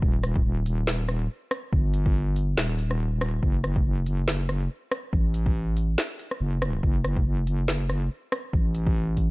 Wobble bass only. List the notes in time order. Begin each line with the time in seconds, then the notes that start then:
0.02 D#1
1.73 G1
2.58 D#1
3.43 F#1
5.13 A1
6.40 F#1
6.83 F#1
8.53 A1